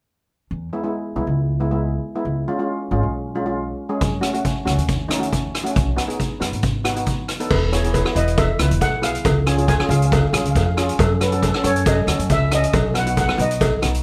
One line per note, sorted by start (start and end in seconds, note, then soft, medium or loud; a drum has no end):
0.51 0.68 E2 medium
0.73 0.80 G#3 medium
0.73 0.80 B3 medium
0.73 0.80 E4 medium
0.84 1.03 G#3 medium
0.84 1.04 B3 medium
0.84 1.04 E4 medium
1.16 1.25 B1 medium
1.16 1.43 G#3 medium
1.16 1.43 B3 medium
1.16 1.43 E4 medium
1.27 1.97 C#2 medium
1.60 1.67 G#3 medium
1.60 1.67 B3 medium
1.60 1.67 E4 medium
1.71 1.98 G#3 medium
1.71 1.97 B3 medium
1.71 1.97 E4 medium
2.15 2.26 G#3 medium
2.15 2.26 B3 medium
2.15 2.26 E4 medium
2.25 2.43 C#2 medium
2.48 2.55 G#3 medium
2.48 2.55 C#4 medium
2.48 2.55 F4 medium
2.59 2.79 G#3 medium
2.59 2.79 C#4 medium
2.59 2.79 F4 medium
2.91 3.00 G#1 medium
2.91 3.18 G#3 medium
2.91 3.18 C#4 medium
2.91 3.18 F4 medium
3.03 3.73 B1 medium
3.35 3.42 G#3 medium
3.35 3.42 C#4 medium
3.35 3.42 F4 medium
3.46 3.72 G#3 medium
3.46 3.72 C#4 medium
3.46 3.72 F4 medium
3.89 4.00 G#3 medium
3.89 4.00 C#4 medium
3.89 4.00 G#4 medium
4.01 4.18 F#2 medium
4.01 kick medium
4.01 closed hi-hat medium
4.21 4.29 A3 medium
4.21 4.29 C#4 medium
4.21 4.29 F#4 medium
4.21 cross-stick medium
4.21 closed hi-hat medium
4.33 4.54 A3 medium
4.33 4.53 C#4 medium
4.33 4.53 F#4 medium
4.33 closed hi-hat soft
4.45 kick medium
4.45 closed hi-hat soft
4.65 4.76 C#2 medium
4.65 4.92 A3 medium
4.65 4.92 C#4 medium
4.65 4.92 F#4 medium
4.65 cross-stick medium
4.65 closed hi-hat medium
4.78 5.47 D#2 medium
4.78 closed hi-hat medium
4.88 kick medium
4.88 closed hi-hat soft
5.08 5.16 A3 medium
5.08 5.16 C#4 medium
5.08 5.16 D#4 medium
5.08 cross-stick medium
5.08 closed hi-hat medium
5.19 5.46 A3 medium
5.19 5.46 C#4 medium
5.19 5.46 F#4 medium
5.19 closed hi-hat medium
5.33 kick medium
5.33 closed hi-hat medium
5.55 cross-stick medium
5.55 closed hi-hat medium
5.64 5.75 A3 medium
5.64 5.75 C#4 medium
5.64 5.75 F#4 medium
5.64 closed hi-hat medium
5.76 5.93 B1 medium
5.76 kick medium
5.76 closed hi-hat medium
5.96 6.04 B3 medium
5.96 6.04 D#4 medium
5.96 6.04 F#4 medium
5.96 cross-stick medium
5.96 closed hi-hat medium
6.08 6.28 B3 medium
6.08 6.28 D#4 medium
6.08 6.28 G#4 medium
6.08 closed hi-hat medium
6.20 kick medium
6.20 closed hi-hat medium
6.40 6.50 F#2 medium
6.40 6.67 B3 medium
6.40 6.67 D#4 medium
6.40 6.67 F#4 medium
6.40 cross-stick medium
6.40 closed hi-hat medium
6.52 7.22 G#1 medium
6.52 closed hi-hat soft
6.63 kick medium
6.63 closed hi-hat soft
6.84 6.91 B3 medium
6.84 6.91 D#4 medium
6.84 6.92 F#4 medium
6.84 cross-stick medium
6.84 closed hi-hat medium
6.95 7.22 B3 medium
6.95 7.22 D#4 medium
6.95 7.22 F#4 medium
6.95 closed hi-hat medium
7.06 kick medium
7.06 closed hi-hat soft
7.28 cross-stick medium
7.28 closed hi-hat medium
7.40 7.50 B3 medium
7.40 7.50 D#4 medium
7.40 7.50 A4 medium
7.40 closed hi-hat medium
7.51 8.03 E1 medium
7.51 7.71 B4 medium
7.51 kick loud
7.51 crash medium
7.51 cowbell medium
7.72 7.79 B3 medium
7.72 7.79 E4 medium
7.72 7.79 G#4 medium
7.72 7.95 C#5 medium
7.72 cross-stick medium
7.72 closed hi-hat medium
7.84 7.96 B3 medium
7.84 7.96 E4 medium
7.84 7.96 G#4 medium
7.84 closed hi-hat medium
7.93 8.16 B4 medium
7.93 kick medium
7.93 closed hi-hat medium
7.93 cowbell medium
8.05 8.11 B3 medium
8.05 8.11 E4 medium
8.05 8.12 F#4 medium
8.05 cross-stick medium
8.15 8.50 E1 medium
8.15 8.42 B3 medium
8.15 8.42 E4 medium
8.15 8.42 B4 medium
8.15 8.39 D#5 medium
8.15 closed hi-hat medium
8.28 closed hi-hat medium
8.37 8.83 E5 medium
8.37 kick loud
8.37 closed hi-hat medium
8.37 cowbell medium
8.59 8.68 C#2 medium
8.59 8.86 B3 medium
8.59 8.86 E4 medium
8.59 8.86 B4 medium
8.59 cross-stick medium
8.59 closed hi-hat medium
8.71 8.79 E1 medium
8.71 closed hi-hat medium
8.81 9.16 B1 medium
8.81 8.91 F#5 medium
8.81 kick medium
8.81 closed hi-hat medium
8.81 cowbell medium
9.02 9.24 B3 medium
9.02 9.24 E4 medium
9.02 9.24 G#4 medium
9.02 9.48 F5 medium
9.02 cross-stick medium
9.02 closed hi-hat medium
9.15 closed hi-hat medium
9.25 9.77 C#2 medium
9.25 kick loud
9.25 closed hi-hat medium
9.25 cowbell medium
9.46 9.54 C#4 medium
9.46 9.53 F4 medium
9.46 9.53 G#4 medium
9.46 9.67 G#5 medium
9.46 cross-stick medium
9.46 closed hi-hat medium
9.57 9.70 C#4 medium
9.57 9.70 F4 medium
9.57 9.70 G#4 medium
9.57 closed hi-hat soft
9.68 9.88 G#5 medium
9.68 kick medium
9.68 closed hi-hat medium
9.68 cowbell medium
9.80 9.86 C#4 medium
9.80 9.86 F4 medium
9.80 9.86 G#4 medium
9.80 cross-stick medium
9.89 10.24 C#2 loud
9.89 10.17 C#4 medium
9.89 10.17 F4 medium
9.89 10.17 G#4 medium
9.89 9.96 F5 medium
9.89 closed hi-hat medium
9.97 10.04 F5 medium
10.02 10.12 F5 medium
10.02 closed hi-hat medium
10.12 10.20 F5 medium
10.12 kick medium
10.12 closed hi-hat medium
10.12 cowbell medium
10.21 10.28 F5 medium
10.29 10.42 B1 medium
10.29 10.60 C#4 medium
10.29 10.60 F4 medium
10.29 10.60 G#4 medium
10.29 10.35 F5 soft
10.34 10.43 F5 medium
10.34 cross-stick medium
10.34 closed hi-hat medium
10.44 10.53 C#2 medium
10.44 10.50 F5 soft
10.44 closed hi-hat medium
10.51 10.57 F5 medium
10.55 10.90 F2 medium
10.55 10.65 F5 medium
10.55 kick medium
10.55 closed hi-hat medium
10.55 cowbell medium
10.66 10.73 F5 medium
10.77 10.99 C#4 medium
10.77 10.99 F4 medium
10.77 10.99 G#4 medium
10.77 cross-stick medium
10.77 closed hi-hat medium
10.89 closed hi-hat medium
10.99 11.51 F#2 loud
10.99 11.20 A4 medium
10.99 kick loud
10.99 closed hi-hat medium
10.99 cowbell medium
11.21 11.28 C#4 medium
11.21 11.28 F#4 medium
11.21 11.28 A4 medium
11.21 11.44 B4 medium
11.21 cross-stick medium
11.21 closed hi-hat medium
11.32 11.45 C#4 medium
11.32 11.45 F#4 medium
11.32 11.45 A4 medium
11.32 closed hi-hat soft
11.43 11.64 A4 medium
11.43 kick medium
11.43 closed hi-hat medium
11.43 cowbell medium
11.54 11.60 C#4 medium
11.54 11.60 F#4 medium
11.54 11.61 A4 medium
11.54 cross-stick medium
11.64 11.99 F#2 loud
11.64 11.91 C#4 medium
11.64 11.90 F#4 medium
11.64 11.91 A4 medium
11.64 11.85 C#5 medium
11.64 closed hi-hat medium
11.76 closed hi-hat medium
11.86 12.32 D#5 medium
11.86 kick loud
11.86 closed hi-hat medium
11.86 cowbell medium
12.07 12.17 D#2 medium
12.07 12.35 C#4 medium
12.07 12.34 F#4 medium
12.07 12.34 A4 medium
12.07 cross-stick medium
12.07 closed hi-hat medium
12.19 12.27 F#2 medium
12.19 closed hi-hat medium
12.30 12.65 C#2 medium
12.30 12.53 E5 medium
12.30 kick medium
12.30 closed hi-hat medium
12.30 cowbell medium
12.51 12.73 C#4 medium
12.51 12.74 F#4 medium
12.51 12.73 A4 medium
12.51 12.94 D#5 medium
12.51 cross-stick medium
12.51 closed hi-hat medium
12.63 closed hi-hat medium
12.73 13.25 B1 loud
12.73 kick loud
12.73 closed hi-hat medium
12.73 cowbell medium
12.94 13.01 B3 medium
12.94 13.01 D#4 medium
12.94 13.02 F#4 medium
12.94 cross-stick medium
12.94 closed hi-hat medium
12.98 13.19 F#5 medium
13.06 13.19 B3 medium
13.06 13.19 D#4 medium
13.06 13.19 F#4 medium
13.06 closed hi-hat medium
13.17 13.39 F#5 medium
13.17 kick medium
13.17 closed hi-hat medium
13.17 cowbell medium
13.28 13.34 B3 medium
13.28 13.34 D#4 medium
13.28 13.34 F#4 medium
13.28 cross-stick medium
13.38 13.73 B1 loud
13.38 13.65 B3 medium
13.38 13.65 D#4 medium
13.38 13.65 F#4 medium
13.38 14.03 D#5 medium
13.38 closed hi-hat medium
13.51 closed hi-hat medium
13.61 kick medium
13.61 closed hi-hat medium
13.61 cowbell loud
13.82 14.02 B1 medium
13.82 14.03 B3 medium
13.82 14.03 D#4 medium
13.82 14.03 F#4 medium
13.82 cross-stick medium
13.82 closed hi-hat medium
13.94 closed hi-hat medium